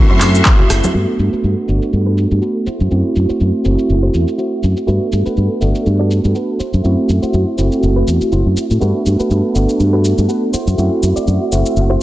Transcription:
Already playing: A3 C4 E4 F#4 E5 C6
0.10 F#2 E4 F#4 C5, shaker
0.21 clap, open hi-hat, high conga, shaker
0.34 shaker
0.45 E4 F#4 C5, kick, clap, shaker
0.59 low conga, shaker
0.70 F#1, muted clean electric guitar stroke, cross-stick, open hi-hat, shaker
0.84 high conga, shaker
0.94 G2 A3 B3 D4 F#4 A4 B4 F#5 B5, shaker
1.19 G2, shaker
1.33 F#4 A4 B4, muted fingered electric bass stroke, shaker
1.44 G2, shaker
1.67 G1 A3 B3 D4 F#4, shaker
1.82 shaker
1.93 G2, shaker
2.06 F#4 A4 B4
2.17 shaker
2.31 G2, muted clean electric guitar stroke, shaker
2.42 F#4 A4 B4, shaker
2.66 E4 F#4 C5 E5 C6, muted fingered electric bass stroke, shaker
2.80 F#2, shaker
2.90 F#2 A3 C4 E4 F#4, shaker
3.16 F#2, shaker
3.29 E4 F#4 C5, muted fingered electric bass stroke, shaker
3.40 F#2, shaker
3.64 F#1 A3 C4 E4 F#4, shaker
3.79 shaker
3.90 F#1, shaker
4.03 E4 F#4 C5
4.14 E2, shaker
4.28 muted clean electric guitar stroke, shaker
4.38 E4 F#4 C5, shaker
4.63 F#2, muted clean electric guitar stroke, shaker
4.77 muted clean electric guitar stroke, shaker
4.87 G2 A3 B3 D4 F#4 A4 B4 F#5 B5, shaker
5.12 G2, shaker
5.26 F#4 A4 B4, muted fingered electric bass stroke, shaker
5.37 G2, shaker
5.60 G1 A3 B3 D4 F#4, shaker
5.75 shaker
5.86 G2, shaker
5.99 F#4 A4 D5
6.11 shaker
6.24 G2, muted clean electric guitar stroke, shaker
6.35 F#4 A4 B4, shaker
6.59 E4 F#4 C5 E5, muted fingered electric bass stroke, shaker
6.74 F#2, shaker
6.84 F#2 A3 C4 E4 F#4, shaker
7.09 F#2, shaker
7.22 E4 F#4 C5, muted fingered electric bass stroke, shaker
7.33 F#2, shaker
7.57 F#1 A3 C4 E4 F#4, shaker
7.72 shaker
7.83 F#1, shaker
7.96 E4 F#4 B4
8.07 E2, shaker
8.21 muted clean electric guitar stroke, muted fingered electric bass stroke, shaker
8.32 F#1 E4 F#4 C5, shaker
8.46 F#2
8.57 muted clean electric guitar stroke, muted fingered electric bass stroke, shaker
8.70 A2, muted clean electric guitar stroke, shaker
8.80 G2 A3 B3 D4 F#4 A4 B4 F#5 B5, shaker
9.06 G2, shaker
9.20 F#4 A4 B4, muted fingered electric bass stroke, shaker
9.30 G2, shaker
9.54 G1 A3 B3 D4 F#4, shaker
9.69 shaker
9.80 G2, shaker
9.93 F#4 A4 B4
10.04 shaker
10.18 G2, muted clean electric guitar stroke, shaker
10.28 F#4 A4 B4, shaker
10.53 E4 F#4 C5 E5 C6, muted fingered electric bass stroke, shaker
10.67 F#2, shaker
10.77 F#2 A3 C4 E4 F#4, shaker
11.03 F#2, shaker
11.16 E4 F#4 D5, muted fingered electric bass stroke, shaker
11.27 F#2, shaker
11.51 F#1 A3 C4 E4 F#4, shaker
11.66 shaker
11.76 F#1, shaker
11.90 E4 F#4 C5

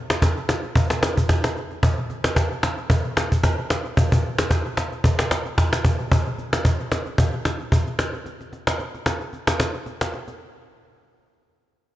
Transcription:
0.10 cajon slap
0.22 cajon bass, cajon slap
0.37 cajon slap
0.49 cajon slap
0.63 cajon slap
0.75 cajon bass
0.90 cajon slap
1.03 cajon slap
1.17 cajon bass
1.29 cajon bass, cajon slap
1.44 cajon slap
1.56 cajon slap
1.71 cajon slap
1.83 cajon bass
1.98 cajon slap
2.10 cajon slap
2.24 cajon slap
2.36 cajon bass, cajon slap
2.52 cajon slap
2.63 cajon slap
2.78 cajon slap
2.90 cajon bass
3.05 cajon slap
3.17 cajon slap
3.32 cajon bass
3.43 cajon bass, cajon slap
3.58 cajon slap
3.70 cajon slap
3.85 cajon slap
3.97 cajon bass
4.12 cajon bass
4.24 cajon slap
4.38 cajon slap
4.51 cajon bass, cajon slap
4.66 cajon slap
4.77 cajon slap
4.92 cajon slap
5.04 cajon bass
5.19 cajon slap
5.31 cajon slap
5.46 cajon slap
5.58 cajon bass, cajon slap
5.73 cajon slap
5.85 cajon bass
5.99 cajon slap
6.12 cajon bass
6.26 cajon slap
6.38 cajon slap
6.53 cajon slap
6.65 cajon bass
6.80 cajon slap
6.92 cajon slap
7.06 cajon slap
7.18 cajon bass
7.33 cajon slap
7.45 cajon slap
7.60 cajon slap
7.72 cajon bass
7.87 cajon slap
7.99 cajon slap
8.14 cajon slap
8.26 cajon slap
8.41 cajon slap
8.53 cajon slap
8.67 cajon slap
8.79 cajon slap
8.95 cajon slap
9.06 cajon slap
9.21 cajon slap
9.33 cajon slap
9.47 cajon slap
9.60 cajon slap
9.74 cajon slap
9.86 cajon slap
10.01 cajon slap
10.14 cajon slap
10.28 cajon slap

